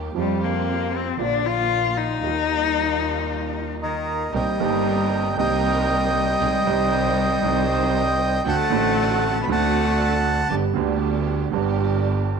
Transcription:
Already playing: D#2 D#3 G3 A#3 D#4 G4
0.14 F2 F3 G3 C4 F4 G4
0.19 G3 G4
0.44 A#3
0.96 C4
1.17 A#1 A#2 D3 F3 A#3 D4 F4
1.21 D4 F4
1.46 F4
1.97 D#4
2.20 D#2 D#3 G3 A#3 D#4 F4
3.82 D#3 A#4 D#5
4.32 C2 C3 D#3 G3 A#3 C4 D#4 G4 A#4 D#5 G5
4.58 G1 G2 D#3 A#3 C4 D#4 G4 A#4
5.36 C2 C3 D#3 G3 A#3 C4 D#4 G4 A#4 D#5 G5
6.40 C2 C3 D#3 G#3 C4 D#4 G#4
6.65 C2 C3 D#3 C4 D#4 C5
7.41 C2 C3 D#3 C4 D#4 C5
7.45 C5
8.45 D2 D3 A3 C4 D4 F#4 F#5 A5
8.70 A1 A2 D3 A3 C4 D4 F#4
9.43 B3 B5
9.47 D2 D3 A3 C4 D4 F#4
9.51 F#4 F#5 A5
10.49 G1 G2 D3 G3 B3 D4 G4
10.74 D2 D3 G3 B3 D4 G4
10.78 G4
11.51 G1 G2 D3 G3 B3 D4 G4
11.56 G4

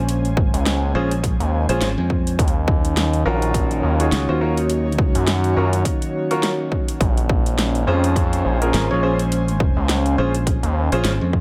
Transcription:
Already playing: A#1 G#3 A#3 C#4 C5 G#5
0.09 closed hi-hat
0.25 A1, closed hi-hat
0.37 kick
0.54 C#2, closed hi-hat
0.66 snare, closed hi-hat
0.95 A#1 C#4 F4 G#4 C5
1.11 closed hi-hat
1.24 kick, closed hi-hat
1.40 D#2, closed hi-hat
1.69 A#1 C#4 F4 G#4 C5, closed hi-hat
1.81 G#1, snare, closed hi-hat
1.98 F2
2.10 kick
2.27 closed hi-hat
2.39 D#2 D#3 F#3 A#3 C#4 D#4, kick, closed hi-hat
2.48 closed hi-hat
2.68 kick
2.85 closed hi-hat
2.97 snare, closed hi-hat
3.09 C#5
3.13 closed hi-hat
3.25 A#1 C#4 F4 F#4 A#4
3.42 closed hi-hat
3.53 F#4, kick, closed hi-hat
3.71 closed hi-hat
3.83 D#2
4.00 C#4 F4 F#4 G#4, closed hi-hat
4.12 C#2, snare, closed hi-hat
4.29 D#2 C#4 F4 F#4 C5
4.41 C#4 F4 F#4 A#4
4.57 closed hi-hat
4.70 closed hi-hat
4.88 D2
4.92 closed hi-hat
4.98 kick
5.15 F#2, closed hi-hat
5.27 snare, closed hi-hat
5.44 closed hi-hat
5.56 F#2 C#4 F4 F#4 A#4
5.73 closed hi-hat
5.85 kick, closed hi-hat
6.02 closed hi-hat
6.31 C#4 F4 F#4 A#4, closed hi-hat
6.43 snare, closed hi-hat
6.72 kick
6.88 closed hi-hat
7.01 A#1 G#3 C#4, kick, closed hi-hat
7.17 closed hi-hat
7.27 C5, kick
7.46 closed hi-hat
7.59 snare, closed hi-hat
7.70 G#5
7.75 closed hi-hat
7.87 F2 C#4 F4 G#4 C5
8.04 closed hi-hat
8.16 kick, closed hi-hat
8.33 closed hi-hat
8.45 A#1
8.62 C#4 F4 G#4 A#4, closed hi-hat
8.74 G#1, snare, closed hi-hat
8.91 A#1 C#4 F4 G#4 C#5
9.03 C#4 F4 G#4 C5
9.19 closed hi-hat
9.32 closed hi-hat
9.48 closed hi-hat
9.60 kick
9.77 C#2
9.89 snare, closed hi-hat
10.06 closed hi-hat
10.18 A#1 C#4 F4 G#4 C5
10.35 closed hi-hat
10.47 kick, closed hi-hat
10.63 D#2, closed hi-hat
10.92 A#1 C#4 F4 G#4 C5, closed hi-hat
11.04 G#1, snare, closed hi-hat
11.21 F2
11.33 kick

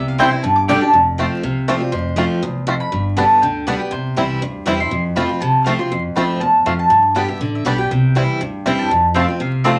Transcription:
Already playing: C2 C3
0.08 F5
0.18 E3 G3 C4 E4 C5 G5
0.31 C4 E4 G#5
0.42 G1 G2 A5
0.56 D6
0.68 D3 G3 A3 D4 G4 D5 G5
0.81 D4 G4 A5
0.93 F1 F2
1.18 F3 A3 C4 F4 G5
1.43 C2 C3 F5
1.68 F3 A3 C4 F4 D5
1.80 C4 F4
1.92 F1 F2 C5
2.16 F3 A3 C4 F4
2.43 C2 E2
2.67 F2 A3 C4 F4
2.80 B5
2.92 G1 G2
3.16 D3 G3 B3 D4 G4 A5
3.42 D2 D3 G5
3.67 D3 G3 B3 D4 G4 D5
3.80 B3 G4
3.91 C2 C3 C5
4.17 C2 E3 G3 C4 E4
4.42 D2 G2
4.66 E2 E3 G3 C4 E4
4.80 C4 E4 C6
4.91 F2
5.16 F3 A3 C4 F4 B5
5.29 C4 F4
5.40 C2 C3 A5
5.65 F3 A3 C4 F4 F5
5.79 C4 F4 C6
5.91 F2
6.16 D2 F3 A3 C4 F4 B5
6.40 E2 A5
6.65 F2 A3 C4 F4 F5
6.79 A5
6.90 G2
7.15 D3 G3 B3 D4 G4 G5
7.28 B3 G4 E5
7.40 A1 D3 D5
7.55 E5
7.65 B1 D3 G3 B3 D4 G4 D5
7.78 B3 G4 G5
7.90 C2 C3
8.15 E3 G3 C4 E4
8.40 D2 G2
8.66 E2 E3 G3 C4 E4
8.79 A5
8.90 F2
9.14 F3 A3 C4 F4 C5 G5 A5
9.28 C4 F4
9.40 C2 C3 F5
9.64 F3 A3 C4 F4 C5 D5 A5

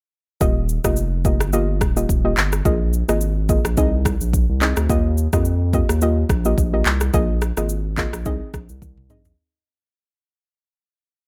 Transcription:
0.41 D#1 A#3 F4 G4 D#5, kick, shaker
0.69 shaker
0.84 F1 A#3 F4 G4 D#5, kick, cross-stick, shaker
0.96 shaker
1.25 A#3 F4 G4 D#5, kick, shaker
1.40 G1, cross-stick, shaker
1.53 A#3 F4 G4 D#5, shaker
1.81 D#1, kick, cross-stick, shaker
1.96 A#3 F4 G4 D#5, shaker
2.09 D#1, kick, shaker
2.24 A#3 F4 G4 D#5
2.37 G1, clap, shaker
2.52 cross-stick, shaker
2.65 A#1 A#3 F4 G#4 D#5, kick, shaker
2.93 shaker
3.08 G#1 A#3 F4 G#4 D#5, cross-stick, shaker
3.21 shaker
3.49 A#3 F4 G#4 D#5, kick, shaker
3.65 A#1, cross-stick, shaker
3.77 C2 C4 D#4 G#4 D#5, kick, shaker
4.05 kick, cross-stick, shaker
4.21 A#1, shaker
4.33 kick, shaker
4.49 C2
4.61 C4 D#4 G#4 D#5, clap, shaker
4.77 D2, cross-stick, shaker
4.89 D#2 A#3 F4 G4 D#5, kick, shaker
5.18 shaker
5.33 F2 A#3 F4 G4 D#5, kick, cross-stick, shaker
5.45 shaker
5.73 A#3 F4 G4 D#5, kick, shaker
5.89 D#2, cross-stick, shaker
6.01 A#3 F4 G4 D#5, shaker
6.29 A#1, kick, cross-stick, shaker
6.45 A#3 F4 G4 D#5, shaker
6.58 A#1, kick, shaker
6.73 A#3 F4 G4 D#5
6.86 C2, clap, shaker
7.01 cross-stick, shaker
7.13 A#1 A#3 F4 G#4 D#5, kick, shaker
7.42 cross-stick, shaker
7.57 G#1 A#3 F4 G#4 D#5, cross-stick, shaker
7.69 shaker
7.97 A#3 F4 G#4 D#5, kick, clap, shaker
8.13 A#1, cross-stick, shaker
8.25 C2 C4 D#4 G#4 D#5, kick, shaker
8.54 A#1, kick, cross-stick, shaker
8.69 C2, shaker
8.82 C2, kick, high tom, shaker
8.98 mid tom
9.10 A#1 C4 D#4 G#4 D#5, mid tom, shaker
9.25 floor tom, shaker

